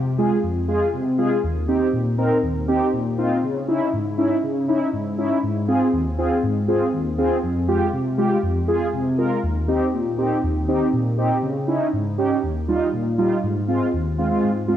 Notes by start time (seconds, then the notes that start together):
Already playing: C3
0.18 G#3 F4 G#4
0.43 F2
0.68 G#3 F4 G#4
0.93 C3
1.18 G#3 F4 G#4
1.43 D#2
1.68 C4 D#4 G4
1.93 A#2
2.18 C4 D#4 A#4
2.43 D#2
2.68 C4 D#4 G4
2.93 A#2
3.18 C4 D#4 F4
3.43 C#3
3.68 C#4 D#4 E4
3.93 G#2
4.18 C#4 D#4 E4
4.43 C#3
4.68 C#4 D#4 E4
4.93 G#2
5.18 C#4 D#4 E4
5.43 G#2
5.68 C4 F4 G#4
5.93 D#2
6.18 C4 F4 G#4
6.43 G#2
6.68 C4 F4 G#4
6.93 D#2
7.18 C4 F4 G#4
7.43 F2
7.68 G#3 F4 G4
7.93 C3
8.18 G#3 F4 G4
8.43 F2
8.68 G#3 F4 G#4
8.93 C3
9.18 G#3 F4 A#4
9.43 D#2
9.68 C4 D#4 G4
9.93 A#2
10.18 C4 D#4 G4
10.43 D#2
10.68 C4 D#4 G4
10.93 A#2
11.18 C4 D#4 G4
11.43 C#3
11.68 C#4 D#4 E4
11.93 G#2
12.18 C#4 D#4 G4
12.43 D#2
12.68 G3 D#4 F4
12.93 A#2
13.18 G3 D#4 F4
13.43 G#2
13.68 G#3 C4 F4
13.93 D#2
14.18 G#3 C4 F4
14.31 G#3 C4 F4
14.43 G#2
14.68 G#3 C4 F4